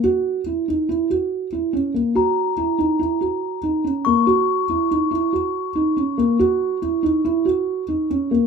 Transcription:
<<
  \new Staff \with { instrumentName = "Glockenspiel" } { \time 5/4 \key dis \phrygian \tempo 4 = 141 r1 r4 | ais''1 r8 cis'''8~ | cis'''2.~ cis'''8 r4. | r1 r4 | }
  \new Staff \with { instrumentName = "Felt piano" } { \time 5/4 \key dis \phrygian fis'4 e'8 dis'8 e'8 fis'4 e'8 cis'8 ais8 | fis'4 e'8 dis'8 e'8 fis'4 dis'8 cis'8 ais8 | fis'4 e'8 dis'8 e'8 fis'4 dis'8 cis'8 ais8 | fis'4 e'8 dis'8 e'8 fis'4 dis'8 cis'8 ais8 | }
>>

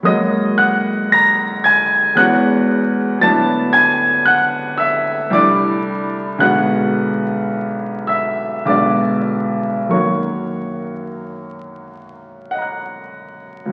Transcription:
<<
  \new Staff \with { instrumentName = "Grand piano" } { \time 3/4 \key fis \mixolydian \tempo 4 = 55 << { dis'''8 fis'''8 ais'''8 gis'''8 fis'''4 | a'''8 gis'''8 fis'''8 e'''8 d'''4 | fis'''4. e'''8 d'''4 | cis'''2 <dis'' fis'' ais'' fis'''>4 | } \\ { dis''8 fis''8 ais''8 gis''8 fis''4 | a''8 gis''8 fis''8 e''8 d''4 | fis''4. e''8 d''4 | cis''2~ cis''8 r8 | } >> }
  \new Staff \with { instrumentName = "Grand piano" } { \time 3/4 \key fis \mixolydian <fis, gis ais cis' fis'>2 <e, gis b cis' fis'>4 | <d, fis b d' e'>2 <c, g a d' e'>4 | <b,, d gis b fis'>2 <b,, d gis b fis'>4 | <fis, dis fis ais fis'>2. | }
>>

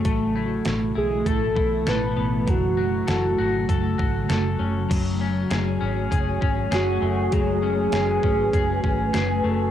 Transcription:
<<
  \new Staff \with { instrumentName = "Soft synth lead" } { \time 4/4 \key fis \minor \tempo 4 = 99 r4. gis'8 a'4 b'4 | fis'2. r4 | r2. fis'4 | gis'2.~ gis'8 r8 | }
  \new Staff \with { instrumentName = "Clean electric guitar" } { \time 4/4 \key fis \minor a8 e'4 e'8 a'8 e'8 a'8 b8 | fis8 fis'8 a'8 fis'8 a'8 fis'8 a'8 cis'8 | fis8 cis'8 gis'8 cis'8 gis'8 cis'8 gis'8 a8 | fis8 cis'8 gis'8 cis'8 gis'8 cis'8 gis'8 a8 | }
  \new Staff \with { instrumentName = "Ambient pad" } { \time 4/4 \key fis \minor << { <b, e e'>1 | <cis fis fis'>1 | <a fis' gis''>1~ | <a fis' gis''>1 | } \\ { a1 | a1 | cis''1 | b'1 | } >> }
  \new Staff \with { instrumentName = "Fingered electric bass" } { \clef bass \time 4/4 \key fis \minor a,,4 a,,8 b,,8 a,,8 b,,8 a,,8 a,,8 | fis,,4 fis,,8 gis,,8 fis,,8 gis,,8 fis,,8 fis,,8 | fis,,4 fis,,8 gis,,8 fis,,8 gis,,8 fis,,8 fis,,8 | fis,,4 fis,,8 gis,,8 fis,,8 gis,,8 fis,,8 fis,,8 | }
  \new DrumStaff \with { instrumentName = "Drums" } \drummode { \time 4/4 <hh bd>4 <hh sn>4 <hh bd>8 bd8 <hh sn>4 | <hh bd>4 <hh sn>4 <hh bd>8 bd8 <hh sn>4 | <cymc hh bd>4 <hh sn>4 <hh bd>8 bd8 <hh sn>4 | <hh bd>4 <hh sn>8 bd8 <hh bd>8 bd8 <hh sn>4 | }
>>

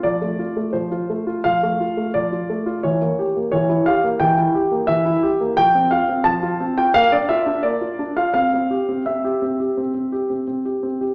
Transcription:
\new Staff \with { instrumentName = "Grand piano" } { \time 4/4 \key f \major \tempo 4 = 86 << { d''4 c''4 f''4 d''4 | cis''4 cis''8 f''8 g''4 e''4 | g''8 f''8 a''8. g''16 f''16 d''16 e''8 d''8. f''16 | f''4 e''2 r4 | } \\ { f16 a16 f'16 a16 f16 f'16 a16 f'16 f16 a16 f'16 a16 f16 f'16 a16 f'16 | e16 bes16 g'16 bes16 e16 e'16 g'16 bes16 e16 e'16 g'16 bes16 e16 e'16 g'16 bes16 | f16 c'16 f'16 c'16 f16 f'16 c'16 f'16 bes16 d'16 f'16 d'16 bes16 f'16 d'16 f'16 | c'16 c'16 g'16 c'16 c'16 g'16 c'16 g'16 c'16 c'16 g'16 c'16 c'16 g'16 c'16 g'16 | } >> }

